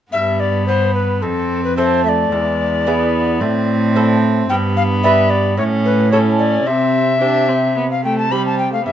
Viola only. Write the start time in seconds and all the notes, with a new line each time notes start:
0.12 B3
1.22 C4
1.77 C4
2.04 A3
2.32 G#3
2.86 B3
3.40 C4
4.50 B3
5.58 C#4
6.13 C#4
6.67 C4
7.21 D4
7.49 C4
7.76 B3
8.03 A3
8.31 G3
8.73 A3
8.86 B3